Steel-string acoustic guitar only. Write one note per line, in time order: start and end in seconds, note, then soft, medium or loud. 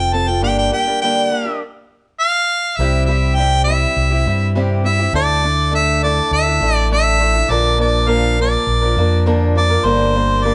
0.00 0.12 C4 soft
0.00 0.13 F4 soft
0.00 0.13 A4 medium
0.12 0.27 F3 medium
0.12 0.28 C4 medium
0.12 0.27 F4 medium
0.12 0.25 A4 medium
0.27 0.42 C4 soft
0.27 0.42 F4 soft
0.27 0.42 A4 soft
0.41 0.71 G2 medium
0.41 0.72 D3 medium
0.41 0.70 G3 medium
0.41 0.71 A#3 medium
0.41 0.71 D4 medium
0.41 0.72 G4 medium
0.71 0.87 G3 medium
0.71 0.87 A#3 medium
0.71 0.86 D4 medium
0.71 0.86 G4 medium
0.87 1.02 G3 soft
0.87 1.02 A#3 soft
0.87 1.02 D4 medium
0.87 1.02 G4 soft
1.02 1.32 G2 medium
1.02 1.32 D3 medium
1.02 1.29 G3 medium
1.02 1.31 A#3 medium
1.02 1.32 D4 medium
1.02 1.32 G4 medium
1.31 1.46 G3 medium
1.31 1.46 A#3 medium
1.31 1.45 D4 medium
1.31 1.44 G4 medium
1.45 1.62 G3 soft
1.45 1.61 A#3 medium
1.45 1.61 D4 medium
1.45 1.60 G4 medium
2.79 3.08 C3 medium
2.79 3.07 G3 medium
2.79 3.08 C4 medium
2.79 3.09 E4 medium
2.79 3.09 G4 loud
3.08 3.38 G3 medium
3.08 3.37 C4 medium
3.08 3.38 E4 medium
3.08 3.38 G4 medium
3.38 3.67 C3 medium
3.38 3.66 G3 medium
3.38 3.67 C4 medium
3.38 3.68 E4 medium
3.38 3.68 G4 medium
3.67 4.11 G3 medium
3.67 4.12 C4 medium
3.67 4.11 E4 medium
3.67 4.09 G4 medium
4.11 4.25 C4 medium
4.11 4.26 E4 medium
4.11 4.26 G4 medium
4.26 4.55 G3 medium
4.26 4.55 C4 medium
4.26 4.56 E4 medium
4.26 4.56 G4 medium
4.55 4.85 C3 medium
4.55 4.83 G3 medium
4.55 4.84 C4 medium
4.55 4.85 E4 medium
4.55 4.86 G4 medium
4.84 4.99 G3 medium
4.84 5.00 C4 medium
4.84 4.99 E4 medium
4.84 4.98 G4 medium
4.99 5.14 C4 soft
4.99 5.14 E4 soft
4.99 5.14 G4 medium
5.13 5.43 D3 medium
5.13 5.42 A3 medium
5.13 5.43 D4 medium
5.13 5.43 E4 medium
5.13 5.44 A4 medium
5.43 5.71 A3 medium
5.43 5.71 D4 medium
5.43 5.71 E4 medium
5.43 5.72 A4 medium
5.71 6.02 D3 medium
5.71 6.01 A3 medium
5.71 6.02 D4 medium
5.71 6.02 E4 medium
5.71 6.03 A4 medium
6.03 6.47 A3 medium
6.03 6.47 D4 medium
6.03 6.46 E4 medium
6.03 6.45 A4 medium
6.46 6.61 D4 medium
6.46 6.61 E4 medium
6.46 6.61 A4 medium
6.61 6.91 A3 medium
6.61 6.91 D4 medium
6.61 6.91 E4 medium
6.61 6.92 A4 medium
6.91 7.21 D3 medium
6.91 7.18 A3 medium
6.91 7.19 D4 medium
6.91 7.20 E4 medium
6.91 7.20 A4 medium
7.19 7.35 A3 medium
7.19 7.35 D4 medium
7.19 7.34 E4 medium
7.19 7.33 A4 medium
7.34 7.50 D4 soft
7.34 7.50 E4 soft
7.34 7.49 A4 medium
7.49 7.79 A#2 medium
7.49 7.79 D3 medium
7.49 7.76 F3 medium
7.49 7.77 A#3 loud
7.49 7.78 D4 medium
7.49 7.79 A#4 loud
7.78 8.06 F3 medium
7.78 8.07 A#3 medium
7.78 8.07 D4 medium
7.78 8.07 A#4 medium
8.07 8.37 A#2 medium
8.07 8.37 D3 medium
8.07 8.37 F3 medium
8.07 8.37 A#3 medium
8.07 8.38 D4 medium
8.07 8.38 A#4 medium
8.38 8.82 F3 medium
8.38 8.82 A#3 medium
8.38 8.81 D4 medium
8.38 8.80 A#4 medium
8.81 8.95 F3 soft
8.81 8.97 A#3 medium
8.81 8.97 D4 medium
8.81 8.97 A#4 medium
8.97 9.25 F3 medium
8.97 9.26 A#3 medium
8.97 9.26 D4 medium
8.97 9.26 A#4 medium
9.26 9.56 A#2 medium
9.26 9.56 D3 medium
9.26 9.54 F3 medium
9.26 9.55 A#3 loud
9.26 9.56 D4 loud
9.26 9.56 A#4 loud
9.55 9.70 F3 medium
9.55 9.70 A#3 medium
9.55 9.70 D4 medium
9.55 9.69 A#4 medium
9.70 9.84 F3 soft
9.70 9.84 A#3 soft
9.70 9.84 D4 medium
9.70 9.85 A#4 medium
9.84 10.14 G2 medium
9.84 10.14 D3 medium
9.84 10.13 G3 medium
9.84 10.13 A#3 medium
9.84 10.15 D4 medium
9.84 10.15 A#4 medium
10.14 10.44 G3 medium
10.14 10.44 A#3 medium
10.14 10.44 D4 medium
10.14 10.44 A#4 medium
10.44 10.54 G2 medium
10.44 10.54 D3 medium
10.44 10.54 G3 medium
10.44 10.54 A#3 medium
10.44 10.54 D4 medium
10.44 10.54 A#4 medium